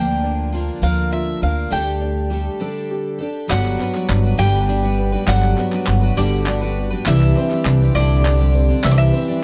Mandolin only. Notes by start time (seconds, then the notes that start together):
Already playing: G5
0.83 F5
1.12 E5
1.43 F5
1.72 G5
3.51 F#5
4.39 G5
5.28 F#5
6.17 D5
7.07 E5
7.95 D5
8.84 E5
8.91 D5
8.98 E5